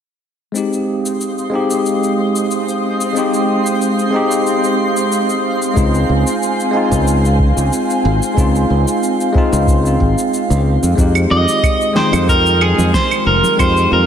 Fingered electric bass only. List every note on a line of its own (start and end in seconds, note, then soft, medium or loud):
5.76 6.03 C#2 medium
6.09 6.23 C#2 medium
6.91 7.51 C#2 medium
7.57 7.69 C#2 medium
8.05 8.19 G#1 loud
8.37 8.64 C#2 medium
8.70 8.84 C#2 medium
9.53 9.96 C#2 medium
10.00 10.14 G#1 medium
10.50 10.76 C#2 medium
10.83 10.95 F2 medium
10.98 11.25 F2 medium
11.31 11.45 F2 medium
12.13 12.73 F2 loud
12.78 12.91 F2 medium
13.26 13.40 F1 medium
13.59 13.86 F2 medium
13.91 14.06 F2 medium